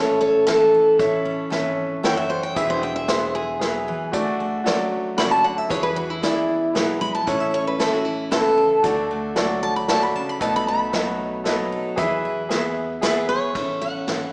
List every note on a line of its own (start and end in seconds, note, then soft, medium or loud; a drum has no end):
0.00 0.74 A1 medium
0.00 0.96 A2 medium
0.00 0.46 E3 medium
0.00 0.96 C#4 medium
0.00 0.47 E4 medium
0.00 0.19 A4 medium
0.00 0.97 A4 medium
0.00 0.20 C#5 medium
0.21 0.45 A4 medium
0.21 0.46 C#5 medium
0.47 1.50 E3 medium
0.47 0.74 E4 medium
0.47 0.97 A4 loud
0.47 snare medium
0.47 closed hi-hat medium
0.75 1.00 E4 medium
0.98 1.43 A1 medium
0.98 1.24 C#4 medium
0.98 2.03 E4 medium
0.98 1.42 A4 medium
0.98 2.29 A4 medium
0.98 1.43 C#5 medium
0.98 1.43 E5 medium
0.98 kick loud
0.98 closed hi-hat medium
1.25 2.53 C#4 medium
1.50 1.96 G#1 medium
1.50 2.02 E3 medium
1.50 1.95 A4 medium
1.50 1.95 C#5 medium
1.50 1.96 E5 medium
1.50 snare medium
1.50 closed hi-hat medium
2.03 2.49 F#1 medium
2.03 2.55 E3 medium
2.03 2.53 E4 medium
2.03 2.47 A4 medium
2.03 2.48 C#5 medium
2.03 2.48 F#5 medium
2.03 2.17 G5 loud
2.03 snare medium
2.03 closed hi-hat medium
2.17 2.30 E5 medium
2.30 2.53 A4 medium
2.30 2.43 C5 medium
2.43 2.57 G5 loud
2.55 3.88 E1 loud
2.55 3.61 E3 medium
2.55 2.82 E4 medium
2.55 3.00 G#4 medium
2.55 4.11 G#4 medium
2.55 3.00 B4 medium
2.55 2.69 E5 loud
2.55 3.00 E5 medium
2.55 kick loud
2.55 closed hi-hat medium
2.70 2.82 C5 loud
2.83 4.11 E4 medium
2.83 2.95 G5 medium
2.96 3.08 E5 medium
3.08 4.10 B3 medium
3.08 3.52 G#4 medium
3.08 3.53 B4 medium
3.08 3.34 C5 medium
3.08 3.53 E5 medium
3.08 snare medium
3.08 closed hi-hat medium
3.35 4.88 G#4 medium
3.59 3.87 F#3 medium
3.59 4.04 G#4 medium
3.59 4.05 B4 medium
3.59 4.05 E5 medium
3.59 snare medium
3.59 closed hi-hat medium
3.88 4.14 E3 medium
4.12 4.57 D2 medium
4.12 4.57 A3 medium
4.12 4.39 A3 medium
4.12 5.68 D4 medium
4.12 4.57 F#4 medium
4.12 5.71 F#4 medium
4.12 4.57 D5 loud
4.12 kick loud
4.12 closed hi-hat medium
4.40 5.71 A3 medium
4.64 5.10 C#2 medium
4.64 5.67 F#3 medium
4.64 5.09 F#4 medium
4.64 5.09 A4 medium
4.64 5.10 D5 medium
4.64 snare medium
4.64 closed hi-hat medium
5.17 5.63 D2 medium
5.17 5.44 C#3 medium
5.17 5.61 F#4 medium
5.17 5.62 A4 medium
5.17 5.62 D5 medium
5.17 5.31 B5 loud
5.17 snare medium
5.17 closed hi-hat medium
5.31 5.44 A5 medium
5.44 5.70 D3 medium
5.44 5.58 F#5 medium
5.58 5.71 E5 medium
5.68 6.14 E2 loud
5.68 6.75 E3 medium
5.68 6.13 E4 medium
5.68 5.97 E4 medium
5.68 6.14 G#4 medium
5.68 7.25 G#4 medium
5.68 6.14 B4 medium
5.68 5.83 C#5 loud
5.68 kick loud
5.68 closed hi-hat medium
5.83 5.96 B4 loud
5.96 7.24 E4 medium
5.96 6.10 F#4 medium
6.10 6.22 E4 medium
6.22 6.67 C#2 medium
6.22 7.24 B3 medium
6.22 6.66 E4 medium
6.22 6.74 E4 loud
6.22 6.67 G#4 medium
6.22 6.67 D5 medium
6.22 snare medium
6.22 closed hi-hat medium
6.74 7.19 B1 medium
6.74 7.01 F#3 medium
6.74 7.18 E4 medium
6.74 7.19 G#4 medium
6.74 7.19 B4 medium
6.74 snare medium
6.74 closed hi-hat medium
7.01 7.27 G#3 medium
7.01 7.14 B5 loud
7.15 7.27 A5 medium
7.26 8.59 A1 medium
7.26 8.81 A2 medium
7.26 7.53 C#4 medium
7.26 7.70 E4 medium
7.26 8.82 E4 medium
7.26 7.71 A4 medium
7.26 8.86 A4 medium
7.26 7.71 C#5 medium
7.26 7.40 F#5 medium
7.26 kick loud
7.26 closed hi-hat medium
7.40 7.53 E5 medium
7.54 8.81 C#4 medium
7.54 7.66 C#5 loud
7.67 7.80 B4 medium
7.78 8.84 E3 medium
7.78 8.23 E4 medium
7.78 8.23 A4 medium
7.78 7.93 A4 medium
7.78 8.24 E5 medium
7.78 snare medium
7.78 closed hi-hat medium
7.93 8.05 F#4 medium
8.05 8.31 E4 medium
8.31 8.57 B2 medium
8.31 8.75 E4 medium
8.31 8.76 A4 medium
8.31 9.33 A4 loud
8.31 8.76 B4 medium
8.31 snare medium
8.31 closed hi-hat medium
8.58 8.84 C#3 medium
8.83 10.15 D2 loud
8.83 9.88 D3 medium
8.83 9.11 A3 medium
8.83 10.39 D4 medium
8.83 9.27 F#4 medium
8.83 10.42 F#4 medium
8.83 9.28 A4 medium
8.83 9.29 D5 medium
8.83 kick loud
8.83 closed hi-hat medium
9.11 10.41 A3 medium
9.36 10.38 F#3 medium
9.36 9.80 F#4 medium
9.36 9.80 A4 medium
9.36 9.81 D5 medium
9.36 snare medium
9.36 closed hi-hat medium
9.63 9.75 A5 loud
9.76 9.89 B5 medium
9.88 10.15 D3 medium
9.88 10.32 F#4 medium
9.88 10.33 A4 medium
9.88 10.33 D5 medium
9.88 10.03 A5 loud
9.88 snare medium
9.88 closed hi-hat medium
10.03 10.16 B5 medium
10.16 10.41 C#3 medium
10.16 10.29 A5 loud
10.29 10.41 B5 loud
10.39 11.72 B1 medium
10.39 11.98 B2 medium
10.39 10.67 A3 medium
10.39 11.45 D#4 medium
10.39 10.84 A4 medium
10.39 11.71 A4 medium
10.39 10.85 B4 medium
10.39 10.85 D#5 medium
10.39 10.54 A5 medium
10.39 kick loud
10.39 closed hi-hat medium
10.56 10.67 B5 loud
10.68 11.98 A3 medium
10.68 11.69 B5 loud
10.92 11.44 F#3 medium
10.92 11.37 A4 medium
10.92 11.37 B4 medium
10.92 11.38 D#5 medium
10.92 snare medium
10.92 closed hi-hat medium
11.44 11.95 F#3 medium
11.44 11.95 D#4 medium
11.44 11.89 A4 medium
11.44 11.89 B4 medium
11.44 11.90 D#5 medium
11.44 snare medium
11.44 closed hi-hat medium
11.72 11.95 A4 medium
11.96 13.30 E2 loud
11.96 14.06 E3 medium
11.96 12.24 E4 medium
11.96 12.41 G#4 medium
11.96 13.02 G#4 medium
11.96 12.41 B4 medium
11.96 12.42 E5 loud
11.96 kick loud
11.96 closed hi-hat medium
12.25 13.53 E4 medium
12.49 13.01 B3 medium
12.49 12.94 G#4 medium
12.49 12.94 B4 medium
12.49 12.95 E5 medium
12.49 snare medium
12.49 closed hi-hat medium
13.01 13.52 B3 medium
13.01 13.46 G#4 medium
13.01 13.28 G#4 medium
13.01 13.47 B4 medium
13.01 13.28 B4 loud
13.01 13.47 E5 medium
13.01 snare medium
13.01 closed hi-hat medium
13.29 13.52 G#4 medium
13.29 13.83 C#5 loud
13.55 13.99 A1 medium
13.55 13.82 C#4 medium
13.55 14.33 E4 medium
13.55 14.33 A4 medium
13.55 kick loud
13.55 ride medium
13.82 14.33 C#4 medium
13.82 14.30 F#5 loud
14.07 14.33 G#1 medium
14.07 14.33 E3 medium
14.07 snare medium
14.07 ride medium